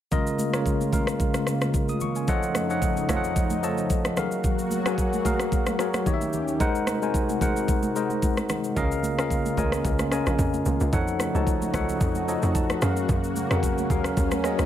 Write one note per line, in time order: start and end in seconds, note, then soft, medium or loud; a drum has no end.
0.11 0.45 C#3 loud
0.11 4.13 C#3 medium
0.11 0.45 G#3 loud
0.11 2.26 A#3 medium
0.11 2.26 F4 medium
0.11 0.45 F4 loud
0.11 0.45 A#4 loud
0.11 0.45 D#5 loud
0.11 kick loud
0.11 low conga medium
0.11 shaker medium
0.27 shaker medium
0.38 high conga medium
0.38 shaker medium
0.53 0.85 C#3 medium
0.53 0.86 G#3 medium
0.53 0.86 F4 medium
0.53 0.86 A#4 medium
0.53 0.86 C#5 medium
0.53 cross-stick loud
0.53 shaker soft
0.66 kick medium
0.66 shaker medium
0.81 high conga medium
0.81 shaker soft
0.92 1.37 C#3 medium
0.92 1.37 G#3 medium
0.92 1.37 F4 medium
0.92 1.37 A#4 medium
0.92 1.37 F5 medium
0.92 kick medium
0.92 high conga medium
0.92 low conga medium
0.92 shaker medium
1.07 cross-stick medium
1.07 shaker medium
1.20 kick loud
1.20 shaker medium
1.34 cross-stick medium
1.34 high conga medium
1.34 shaker medium
1.47 cross-stick medium
1.47 shaker medium
1.61 cross-stick medium
1.61 high conga soft
1.61 shaker medium
1.74 kick medium
1.74 shaker medium
1.89 2.01 D#6 medium
1.89 high conga medium
1.89 shaker soft
2.00 2.15 C#6 medium
2.00 low conga medium
2.00 shaker medium
2.15 2.42 G#5 medium
2.15 shaker medium
2.28 4.15 F2 medium
2.28 2.61 F3 loud
2.28 4.15 F3 medium
2.28 4.15 A3 medium
2.28 4.15 D#4 medium
2.28 2.61 F4 loud
2.28 2.61 A4 loud
2.28 2.61 C#5 loud
2.28 2.61 D#5 loud
2.28 2.61 F#5 loud
2.28 kick loud
2.28 low conga medium
2.28 shaker medium
2.43 shaker medium
2.55 cross-stick medium
2.55 high conga medium
2.55 shaker medium
2.70 3.02 F3 medium
2.70 3.02 F4 medium
2.70 3.02 A4 medium
2.70 3.02 C#5 medium
2.70 3.02 D#5 medium
2.70 3.02 F#5 medium
2.70 shaker soft
2.82 kick medium
2.82 shaker medium
2.97 high conga medium
2.97 shaker soft
3.09 3.53 F3 medium
3.09 3.53 F4 medium
3.09 3.53 A4 medium
3.09 3.54 C#5 medium
3.09 3.54 D#5 medium
3.09 3.17 F5 medium
3.09 kick medium
3.09 cross-stick medium
3.09 high conga medium
3.09 low conga medium
3.09 shaker medium
3.17 3.57 F#5 loud
3.24 shaker medium
3.36 kick loud
3.36 shaker medium
3.50 high conga medium
3.50 shaker medium
3.63 4.17 F3 medium
3.63 4.17 F4 medium
3.63 4.17 A4 medium
3.63 4.17 C#5 medium
3.63 4.17 D#5 medium
3.63 4.18 A5 medium
3.63 shaker medium
3.78 high conga medium
3.78 shaker medium
3.90 kick medium
3.90 shaker medium
4.05 cross-stick medium
4.05 high conga medium
4.05 shaker soft
4.17 4.71 F#3 medium
4.17 6.04 F#3 medium
4.17 6.04 A#3 medium
4.17 6.04 F#4 medium
4.17 4.71 F#4 medium
4.17 4.71 G#4 medium
4.17 4.71 A#4 medium
4.17 4.72 F5 loud
4.17 cross-stick medium
4.17 low conga medium
4.17 shaker medium
4.31 shaker medium
4.44 kick loud
4.44 low conga medium
4.44 shaker medium
4.59 shaker medium
4.71 high conga medium
4.71 shaker medium
4.86 5.18 F#3 medium
4.86 5.18 F#4 medium
4.86 5.18 G#4 medium
4.86 5.18 A#4 medium
4.86 5.18 G#5 medium
4.86 cross-stick loud
4.86 shaker soft
4.98 kick medium
4.98 shaker medium
5.13 high conga medium
5.13 shaker soft
5.25 5.69 F#3 medium
5.25 5.69 F#4 medium
5.25 5.70 G#4 medium
5.25 5.70 A#4 medium
5.25 5.70 F5 loud
5.25 kick medium
5.25 high conga medium
5.25 low conga medium
5.25 shaker medium
5.39 cross-stick medium
5.39 shaker medium
5.52 kick loud
5.52 shaker medium
5.66 cross-stick medium
5.66 high conga medium
5.66 shaker medium
5.79 6.06 F#3 medium
5.79 6.06 F#4 medium
5.79 6.06 G#4 medium
5.79 6.07 A#4 medium
5.79 6.06 C#5 medium
5.79 cross-stick medium
5.79 shaker medium
5.94 cross-stick medium
5.94 high conga medium
5.94 shaker soft
6.06 6.60 D#2 medium
6.06 6.50 D#3 medium
6.06 6.60 D#3 medium
6.06 6.60 C#4 medium
6.06 6.51 D#4 medium
6.06 6.60 G4 medium
6.06 6.51 G4 medium
6.06 6.51 C#5 medium
6.06 6.14 D#5 medium
6.06 kick medium
6.06 shaker medium
6.14 6.54 E5 medium
6.21 high conga medium
6.21 shaker soft
6.33 low conga medium
6.33 shaker medium
6.48 shaker medium
6.60 8.74 C3 medium
6.60 6.93 G#3 loud
6.60 8.74 G#3 medium
6.60 6.93 D#4 loud
6.60 8.74 F#4 medium
6.60 6.93 A#4 loud
6.60 6.94 C5 loud
6.60 6.94 F#5 loud
6.60 kick loud
6.60 shaker medium
6.75 shaker medium
6.87 cross-stick loud
6.87 high conga medium
6.87 shaker medium
7.02 7.34 G#3 medium
7.02 7.34 D#4 medium
7.02 7.34 A#4 medium
7.02 7.34 C5 medium
7.02 7.35 G#5 medium
7.02 shaker soft
7.14 kick medium
7.14 shaker medium
7.29 high conga medium
7.29 shaker medium
7.41 7.86 G#3 medium
7.41 7.86 D#4 medium
7.41 7.86 A#4 medium
7.41 7.86 C5 medium
7.41 7.86 F#5 medium
7.41 kick medium
7.41 high conga medium
7.41 low conga medium
7.41 shaker medium
7.56 shaker medium
7.68 kick loud
7.68 shaker medium
7.83 high conga medium
7.83 shaker medium
7.95 8.61 G#3 medium
7.95 8.61 D#4 medium
7.95 8.62 A#4 medium
7.95 8.62 C5 medium
7.95 8.62 D#5 medium
7.95 shaker medium
8.10 high conga medium
8.10 shaker soft
8.22 kick medium
8.22 shaker medium
8.37 cross-stick medium
8.37 high conga medium
8.37 shaker soft
8.49 cross-stick loud
8.49 low conga medium
8.49 shaker medium
8.64 shaker medium
8.76 9.20 C#2 loud
8.76 9.09 C#3 loud
8.76 12.78 C#3 medium
8.76 10.90 A#3 medium
8.76 9.09 C#4 loud
8.76 10.91 F4 medium
8.76 9.10 A#4 loud
8.76 9.10 D#5 loud
8.76 9.10 F5 loud
8.76 kick loud
8.76 low conga medium
8.76 shaker medium
8.92 shaker medium
9.03 high conga medium
9.03 shaker medium
9.18 9.52 D#2 medium
9.18 9.50 C#3 medium
9.18 9.50 C#4 medium
9.18 9.50 A#4 medium
9.18 9.51 D#5 medium
9.18 9.51 F5 medium
9.18 cross-stick loud
9.18 shaker soft
9.30 kick medium
9.30 shaker medium
9.46 high conga medium
9.46 shaker medium
9.57 9.81 C#2 medium
9.57 10.02 C#3 medium
9.57 10.02 C#4 medium
9.57 10.02 A#4 medium
9.57 10.02 D#5 medium
9.57 10.02 G#5 loud
9.57 kick medium
9.57 high conga medium
9.57 low conga medium
9.57 shaker medium
9.72 cross-stick medium
9.72 shaker medium
9.85 10.21 C#2 loud
9.85 kick loud
9.85 shaker medium
9.99 cross-stick medium
9.99 high conga medium
9.99 shaker medium
10.11 10.77 C#3 medium
10.11 10.78 C#4 medium
10.11 10.78 A#4 medium
10.11 10.78 D#5 medium
10.11 10.78 G#5 medium
10.11 cross-stick medium
10.11 shaker medium
10.26 10.37 A#1 medium
10.26 cross-stick medium
10.26 high conga medium
10.26 shaker medium
10.39 10.62 F2 medium
10.39 kick medium
10.39 shaker medium
10.54 high conga medium
10.54 shaker soft
10.65 10.79 C#2 medium
10.65 low conga medium
10.65 shaker medium
10.80 10.91 C#2 medium
10.80 shaker medium
10.92 11.29 F2 loud
10.92 11.26 F3 loud
10.92 12.80 A3 medium
10.92 12.80 D#4 medium
10.92 11.26 D#4 loud
10.92 14.66 F#4 medium
10.92 11.26 A4 loud
10.92 11.26 C#5 loud
10.92 11.26 F#5 loud
10.92 kick loud
10.92 low conga medium
10.92 shaker medium
11.08 shaker medium
11.19 cross-stick medium
11.19 high conga medium
11.19 shaker medium
11.34 11.69 C#2 medium
11.34 11.66 F3 medium
11.34 11.66 D#4 medium
11.34 11.67 A4 medium
11.34 11.67 C#5 medium
11.34 11.67 A5 medium
11.34 shaker soft
11.47 kick medium
11.47 shaker medium
11.62 high conga medium
11.62 shaker medium
11.74 11.97 C#2 medium
11.74 12.18 F3 medium
11.74 12.18 D#4 medium
11.74 12.18 A4 medium
11.74 12.18 C#5 medium
11.74 12.19 F#5 medium
11.74 kick medium
11.74 cross-stick medium
11.74 high conga medium
11.74 low conga medium
11.74 shaker medium
11.89 shaker medium
12.01 12.37 F2 loud
12.01 kick loud
12.01 shaker medium
12.15 high conga medium
12.15 shaker medium
12.28 12.82 F3 medium
12.28 12.82 D#4 medium
12.28 12.82 A4 medium
12.28 12.82 C#5 medium
12.28 12.82 D#5 medium
12.28 shaker medium
12.42 12.77 F2 medium
12.42 high conga medium
12.42 shaker medium
12.55 12.80 A5 medium
12.55 kick loud
12.55 shaker medium
12.70 cross-stick medium
12.70 high conga medium
12.70 shaker soft
12.81 13.06 F#2 loud
12.81 14.66 C#3 medium
12.81 13.36 F#3 medium
12.81 14.66 A#3 medium
12.81 13.36 C#4 medium
12.81 13.36 G#4 medium
12.81 13.36 A#4 medium
12.81 13.36 F5 loud
12.81 cross-stick loud
12.81 low conga medium
12.81 shaker medium
12.96 shaker medium
13.09 13.45 F#2 loud
13.09 kick loud
13.09 swell medium
13.09 low conga medium
13.09 shaker medium
13.24 shaker medium
13.35 high conga medium
13.35 shaker medium
13.51 13.85 F2 medium
13.51 13.83 C#4 medium
13.51 13.83 F#4 medium
13.51 13.83 G#4 medium
13.51 13.83 A#4 medium
13.51 13.83 F#5 medium
13.51 cross-stick loud
13.51 shaker soft
13.63 kick medium
13.63 shaker medium
13.78 high conga medium
13.78 shaker medium
13.90 14.13 D#2 medium
13.90 14.34 F#3 medium
13.90 14.34 C#4 medium
13.90 14.35 G#4 medium
13.90 14.35 A#4 medium
13.90 14.35 F5 medium
13.90 kick medium
13.90 high conga medium
13.90 low conga medium
13.90 shaker medium
14.04 cross-stick medium
14.04 shaker medium
14.17 14.53 D#2 loud
14.17 kick loud
14.17 shaker medium
14.31 cross-stick medium
14.31 high conga medium
14.31 shaker medium
14.44 14.66 F#3 medium
14.44 14.66 C#4 medium
14.44 14.66 G#4 medium
14.44 14.66 A#4 medium
14.44 14.66 D#5 medium
14.44 cross-stick medium
14.44 shaker medium
14.59 14.66 C#2 medium
14.59 cross-stick medium
14.59 high conga medium
14.59 shaker medium